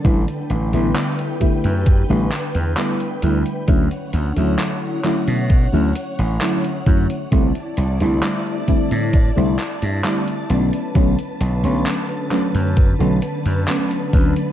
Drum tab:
HH |xxxxxxxxx-xxxxxx|xxxxx-xxx-xxxxxx|xxxxx-xxx-xxxxxx|xxxxx-xxx-xxxxxx|
TB |xx-xxx-xxx-xxx-x|xx-xxx-xxx-xxx-x|xx-xxx-xxx-xxx-x|xx-xxx-xxx-xxx-x|
CP |----x-----x-x---|----x-x-----x---|----x-----x-x---|----x-x-----x---|
BD |o-----o-o-------|o-------o-----o-|o-----o-o-------|o-------o-----o-|